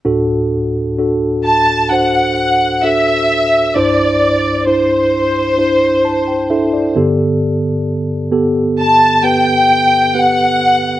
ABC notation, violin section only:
X:1
M:4/4
L:1/8
Q:1/4=66
K:Dmix
V:1 name="Violin section"
z3 a f2 e2 | d2 c4- c z | z3 a g2 f2 |]